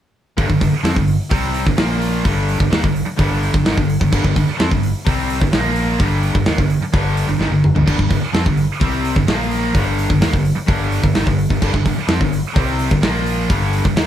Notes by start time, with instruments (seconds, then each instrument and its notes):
0.37 fingered electric bass G1, overdriven electric guitar G2 D3, kick, open hi-hat
0.48 fingered electric bass G1, overdriven electric guitar G2 D3, kick
0.60 fingered electric bass G1, overdriven electric guitar G2 D3, kick, open hi-hat
0.71 muted overdriven electric guitar stroke, muted distorted electric guitar stroke
0.83 fingered electric bass F2, overdriven electric guitar F3 C4, snare, open hi-hat
0.95 fingered electric bass G1, overdriven electric guitar G2 D3, kick
1.08 open hi-hat
1.30 fingered electric bass C2, overdriven electric guitar C3 G3 C4, kick, open hi-hat
1.54 open hi-hat
1.65 fingered electric bass G1, overdriven electric guitar G2 D3, kick
1.77 fingered electric bass A#1, overdriven electric guitar A#2 F3 A#3, snare, open hi-hat
2.02 open hi-hat
2.24 fingered electric bass G1, overdriven electric guitar G2 D3 G3, kick, open hi-hat
2.49 open hi-hat
2.59 fingered electric bass G1, overdriven electric guitar G2 D3, kick
2.71 fingered electric bass D#2, overdriven electric guitar D#3 A#3, snare, open hi-hat
2.82 fingered electric bass G1, overdriven electric guitar G2 D3, kick
2.96 open hi-hat
3.06 muted distorted electric guitar stroke, muted overdriven electric guitar stroke
3.17 fingered electric bass G1, overdriven electric guitar G2 D3 G3, kick, open hi-hat
3.43 open hi-hat
3.53 fingered electric bass G1, overdriven electric guitar G2 D3, kick
3.64 fingered electric bass G#1, overdriven electric guitar G#2 D#3, snare, open hi-hat
3.77 fingered electric bass G1, overdriven electric guitar G2 D3, kick
3.90 open hi-hat
3.99 fingered electric bass G1, overdriven electric guitar G2 D3, kick
4.11 fingered electric bass G1, overdriven electric guitar G2 D3, kick, crash
4.23 fingered electric bass G1, overdriven electric guitar G2 D3, kick
4.35 fingered electric bass G1, overdriven electric guitar G2 D3, kick, open hi-hat
4.47 muted overdriven electric guitar stroke, muted distorted electric guitar stroke
4.57 fingered electric bass F2, overdriven electric guitar F3 C4, snare, open hi-hat
4.70 fingered electric bass G1, overdriven electric guitar G2 D3, kick
4.83 open hi-hat
5.05 fingered electric bass C2, overdriven electric guitar C3 G3 C4, kick, open hi-hat
5.30 open hi-hat
5.40 fingered electric bass G1, overdriven electric guitar G2 D3, kick
5.51 fingered electric bass A#1, overdriven electric guitar A#2 F3 A#3, snare, open hi-hat
5.76 open hi-hat
5.98 fingered electric bass G1, overdriven electric guitar G2 D3 G3, kick, open hi-hat
6.23 open hi-hat
6.34 fingered electric bass G1, overdriven electric guitar G2 D3, kick
6.46 fingered electric bass D#2, overdriven electric guitar D#3 A#3, snare, open hi-hat
6.58 fingered electric bass G1, overdriven electric guitar G2 D3, kick
6.70 open hi-hat
6.80 muted fingered electric bass stroke, muted overdriven electric guitar stroke, muted distorted electric guitar stroke
6.93 fingered electric bass G1, overdriven electric guitar G2 D3 G3, kick, open hi-hat
7.17 open hi-hat
7.28 fingered electric bass G1, overdriven electric guitar G2 D3
7.38 fingered electric bass G#1, overdriven electric guitar G#2 D#3, snare
7.50 fingered electric bass G1, overdriven electric guitar G2 D3
7.64 mid tom
7.74 fingered electric bass G1, overdriven electric guitar G2 D3, floor tom
7.86 fingered electric bass G1, overdriven electric guitar G2 D3, kick, crash
7.98 fingered electric bass G1, overdriven electric guitar G2 D3, kick
8.09 fingered electric bass G1, overdriven electric guitar G2 D3, kick, open hi-hat
8.21 muted overdriven electric guitar stroke, muted distorted electric guitar stroke, muted fingered electric bass stroke
8.33 fingered electric bass F2, overdriven electric guitar F3 C4, snare, open hi-hat
8.44 fingered electric bass G1, overdriven electric guitar G2 D3, kick
8.57 open hi-hat
8.80 fingered electric bass C2, overdriven electric guitar C3 G3 C4, kick, open hi-hat
9.05 open hi-hat
9.16 fingered electric bass G1, overdriven electric guitar G2 D3, kick
9.27 fingered electric bass A#1, overdriven electric guitar A#2 F3 A#3, snare, open hi-hat
9.51 open hi-hat
9.74 fingered electric bass G1, overdriven electric guitar G2 D3 G3, kick, open hi-hat
9.98 open hi-hat
10.09 fingered electric bass G1, overdriven electric guitar G2 D3, kick
10.20 fingered electric bass D#2, overdriven electric guitar D#3 A#3, snare, open hi-hat
10.32 fingered electric bass G1, overdriven electric guitar G2 D3, kick
10.45 open hi-hat
10.56 muted distorted electric guitar stroke, muted overdriven electric guitar stroke, muted fingered electric bass stroke
10.67 fingered electric bass G1, overdriven electric guitar G2 D3 G3, kick, open hi-hat
10.92 open hi-hat
11.02 fingered electric bass G1, overdriven electric guitar G2 D3, kick
11.14 fingered electric bass G#1, overdriven electric guitar G#2 D#3, snare, open hi-hat
11.26 fingered electric bass G1, overdriven electric guitar G2 D3, kick
11.39 open hi-hat
11.49 fingered electric bass G1, overdriven electric guitar G2 D3, kick
11.61 fingered electric bass G1, overdriven electric guitar G2 D3, kick, crash
11.72 fingered electric bass G1, overdriven electric guitar G2 D3, kick
11.84 fingered electric bass G1, overdriven electric guitar G2 D3, kick, open hi-hat
11.96 muted overdriven electric guitar stroke, muted fingered electric bass stroke, muted distorted electric guitar stroke
12.07 fingered electric bass F2, overdriven electric guitar F3 C4, snare, open hi-hat
12.19 fingered electric bass G1, overdriven electric guitar G2 D3, kick
12.33 open hi-hat
12.54 fingered electric bass C2, overdriven electric guitar C3 G3 C4, kick, open hi-hat
12.79 open hi-hat
12.90 fingered electric bass G1, overdriven electric guitar G2 D3, kick
13.02 fingered electric bass A#1, overdriven electric guitar A#2 F3 A#3, snare, open hi-hat
13.26 open hi-hat
13.49 fingered electric bass G1, overdriven electric guitar G2 D3 G3, kick, open hi-hat
13.73 open hi-hat
13.85 fingered electric bass G1, overdriven electric guitar G2 D3, kick
13.95 fingered electric bass D#2, overdriven electric guitar D#3 A#3, snare, open hi-hat